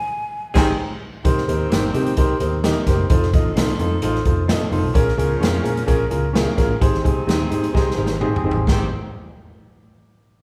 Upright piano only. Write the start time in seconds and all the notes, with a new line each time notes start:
0.55 C4 D#4 G4 G#4 C5 G5
1.24 D#4 G4 A#4 C5
1.48 D#4 G4 A#4 C5
1.71 D#4 G4 A#4 C5
1.94 D#4 G4 A#4 C5
2.17 D#4 G4 A#4 C5
2.40 D#4 G4 A#4 C5
2.64 D#4 G4 A#4 D#5
2.87 D#4 G4 A#4 C5
3.10 D#4 F4 A4 C5
3.34 D#4 F4 A4 D#5
3.56 D#4 F4 A4 C5
3.79 D#4 F4 A4 C5
4.02 D#4 F4 A4 C5
4.26 D#4 F4 A4 C5
4.48 D#4 F4 A4 D#5
4.72 D#4 F4 A4 C5
4.94 C#4 F4 G#4 A#4
5.17 C#4 F4 G#4 A#4
5.41 C#4 F4 G#4 A#4
5.63 C#4 F4 G#4 A#4
5.87 C#4 F4 G#4 A#4
6.10 C#4 F4 G#4 A#4
6.34 C#4 F4 G#4 A#4
6.57 C#4 F4 G#4 A#4
6.81 D#4 G4 G#4 C5
7.03 D#4 G4 G#4 C5
7.27 D#4 G4 G#4 C5
7.50 D#4 G4 G#4 C5
7.73 D#4 G4 G#4 C5
7.97 D#4 G4 G#4 C5
8.21 D#4 G4 G#4 C5
8.44 D#4 G4 G#4 C5
8.68 D#4 G4 G#4 C5